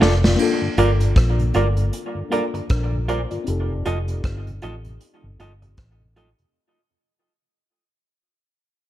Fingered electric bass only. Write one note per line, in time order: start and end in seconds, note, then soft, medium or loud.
0.01 0.35 F1 medium
0.78 1.12 G1 medium
1.16 1.51 A#1 medium
1.55 1.89 G1 medium
2.70 3.24 A#1 medium
3.48 3.82 F1 loud
3.86 4.20 F1 medium
4.24 4.58 G1 loud
4.63 4.97 A1 medium
5.24 5.38 G1 medium
5.40 5.74 G1 medium
5.78 6.32 A1 medium